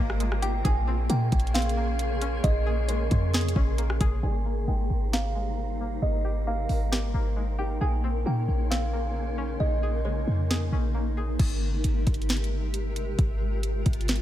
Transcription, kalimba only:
0.00 0.39 F5 medium
0.42 0.64 G5 medium
0.65 1.07 G#5 loud
1.10 1.52 G5 medium
1.54 1.96 F5 medium
2.44 2.86 D#5 loud
2.88 4.19 C#5 medium
4.23 4.65 G#5 loud
4.68 5.10 G5 medium
5.13 5.55 F5 medium
6.02 6.44 D#5 medium
6.47 7.55 F5 medium
7.59 7.80 G5 medium
7.81 8.23 G#5 medium
8.27 8.68 G5 medium
8.71 9.13 F5 medium
9.60 10.02 D#5 medium
10.05 11.35 C#5 medium

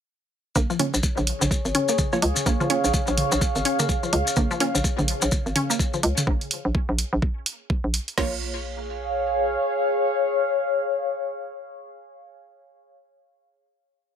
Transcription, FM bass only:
0.56 0.66 A#1 loud
0.94 1.01 A#1 medium
1.18 1.33 A#1 loud
1.41 1.48 A#1 loud
1.65 1.72 G#1 medium
2.22 2.32 C#2 loud
2.46 2.56 A#1 loud
2.84 2.91 A#1 medium
3.08 3.23 A#1 loud
3.32 3.39 A#1 loud
3.56 3.62 G#1 medium
4.13 4.23 C#2 loud
4.37 4.47 A#1 loud
4.75 4.81 A#1 medium
4.98 5.14 A#1 loud
5.22 5.29 A#1 loud
5.46 5.53 G#1 medium
6.03 6.13 C#2 loud
6.27 6.37 A#1 loud
6.65 6.72 A#1 medium
6.89 7.04 A#1 loud
7.13 7.20 A#1 loud
7.84 8.00 A#1 medium
8.18 9.56 A#1 loud

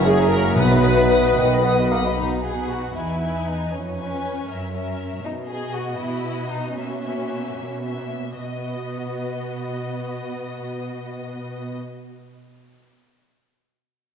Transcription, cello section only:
0.00 0.47 F#2 medium
0.57 1.28 B2 medium
1.38 2.08 B2 medium
2.18 2.86 B2 medium
2.95 3.63 E2 soft
3.72 4.39 F2 soft
4.47 5.14 F#2 soft
5.23 5.91 B2 soft
5.99 6.67 B2 soft
6.77 7.47 B2 soft
7.56 8.30 B2 soft
8.40 11.74 B2 soft

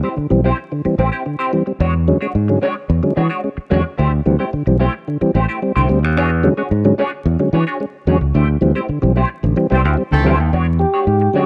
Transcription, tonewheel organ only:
0.03 0.09 G3 soft
0.03 0.09 C4 soft
0.17 0.27 D3 medium
0.30 0.41 E3 medium
0.30 0.41 G3 medium
0.30 0.41 C4 loud
0.44 0.50 G3 soft
0.44 0.50 C4 soft
0.72 0.82 D3 medium
0.85 0.95 E3 medium
0.85 0.95 G3 medium
0.85 0.95 C4 medium
0.99 1.04 G3 soft
0.99 1.04 C4 soft
1.26 1.36 D3 medium
1.53 1.63 E3 medium
1.53 1.63 G3 medium
1.53 1.63 C4 loud
1.67 1.72 G3 soft
1.67 1.72 C4 soft
2.08 2.18 D3 medium
2.08 2.18 F#3 medium
2.08 2.18 G#3 medium
2.08 2.18 C#4 loud
2.22 2.27 G#3 soft
2.22 2.27 C#4 soft
2.49 2.59 D3 medium
2.49 2.59 F#3 medium
2.49 2.59 G#3 medium
2.49 2.59 C#4 medium
2.63 2.68 G#3 soft
2.63 2.68 C#4 soft
3.03 3.13 D3 medium
3.03 3.13 F#3 medium
3.03 3.13 G#3 medium
3.03 3.13 C#4 medium
3.17 3.22 G#3 soft
3.17 3.22 C#4 soft
3.44 3.49 G#3 soft
3.44 3.49 C#4 soft
3.71 3.81 D3 medium
3.71 3.81 F#3 medium
3.71 3.81 G#3 medium
3.71 3.81 C#4 medium
3.98 4.09 D3 medium
4.26 4.36 E3 medium
4.26 4.36 G3 medium
4.26 4.36 C4 loud
4.40 4.45 G3 soft
4.40 4.45 C4 medium
4.53 4.63 D3 medium
4.67 4.77 E3 medium
4.67 4.77 G3 medium
4.67 4.77 C4 loud
4.80 4.86 G3 soft
4.80 4.86 C4 soft
5.08 5.18 D3 medium
5.21 5.31 E3 medium
5.21 5.31 G3 medium
5.21 5.32 C4 medium
5.35 5.40 G3 soft
5.35 5.40 C4 medium
5.62 5.72 G3 medium
5.62 5.72 C4 medium
5.76 5.86 D3 medium
5.89 5.99 G3 medium
5.89 5.99 C4 medium
6.43 6.54 D3 medium
6.43 6.54 F#3 medium
6.43 6.54 G#3 medium
6.43 6.54 C#4 loud
6.57 6.63 G#3 soft
6.57 6.63 C#4 soft
6.84 6.95 D3 medium
6.84 6.95 F#3 medium
6.84 6.95 G#3 medium
6.84 6.95 C#4 loud
6.99 7.04 G#3 soft
6.99 7.04 C#4 soft
7.39 7.49 D3 medium
7.39 7.49 F#3 medium
7.39 7.49 G#3 medium
7.39 7.50 C#4 medium
7.53 7.58 G#3 soft
7.53 7.58 C#4 soft
7.80 7.86 G#3 soft
7.80 7.86 C#4 soft
8.07 8.17 D3 medium
8.07 8.17 F#3 medium
8.07 8.17 G#3 medium
8.07 8.18 C#4 medium
8.35 8.45 D3 medium
8.61 8.71 E3 medium
8.61 8.72 G3 medium
8.61 8.72 C4 loud
8.76 8.81 G3 soft
8.76 8.81 C4 soft
8.89 8.99 D3 medium
9.02 9.12 E3 medium
9.02 9.13 G3 medium
9.02 9.13 C4 medium
9.16 9.22 G3 soft
9.16 9.22 C4 soft
9.43 9.53 D3 medium
9.56 9.67 E3 medium
9.56 9.67 G3 medium
9.56 9.67 C4 medium
9.70 9.76 G3 soft
9.70 9.76 C4 soft
9.97 10.03 G3 soft
9.97 10.03 C4 medium
10.11 10.21 D3 medium
10.24 10.35 E3 medium
10.24 10.35 G3 medium
10.24 10.35 C4 medium
10.79 11.46 G4 loud
11.33 11.46 D3 medium
11.33 11.46 F#3 medium
11.33 11.46 G#3 medium
11.33 11.46 C#4 medium

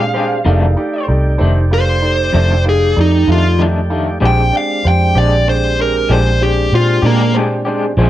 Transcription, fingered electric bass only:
0.00 0.42 A#2 medium
0.46 0.75 F1 medium
1.09 1.37 C2 medium
1.41 2.30 F1 medium
2.34 2.93 F1 medium
2.97 3.26 F2 medium
3.28 4.18 F2 medium
4.22 4.51 A#1 medium
4.85 5.14 F2 medium
5.15 6.06 A#1 medium
6.10 6.68 A#1 medium
6.72 7.01 A#2 medium
7.03 7.93 A#2 medium
7.97 8.10 A#1 medium

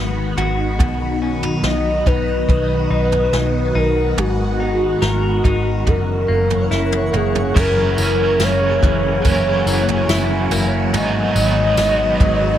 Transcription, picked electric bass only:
0.00 0.32 G#1 medium
0.37 0.80 G#1 medium
0.80 1.54 B1 medium
1.63 2.00 B1 medium
2.06 2.43 B1 medium
2.49 2.86 B1 medium
2.90 3.28 B1 medium
3.33 3.70 B1 medium
3.75 4.12 B1 medium
4.17 4.92 G#1 medium
5.02 5.39 G#1 medium
5.45 5.82 G#1 medium
5.87 6.24 F#1 medium
6.29 6.66 F#1 medium
6.71 7.08 F#1 medium
7.13 7.50 F#1 medium
7.56 7.93 F#1 loud
7.98 8.35 F#1 medium
8.39 8.77 F#1 medium
8.83 9.20 F#1 medium
9.25 9.62 F#1 medium
9.66 10.03 F#1 medium
10.08 10.46 F#1 medium
10.51 10.93 F#1 loud
10.93 11.30 G#1 loud
11.35 11.73 G#1 loud
11.77 12.15 G#1 loud
12.20 12.57 G#1 loud

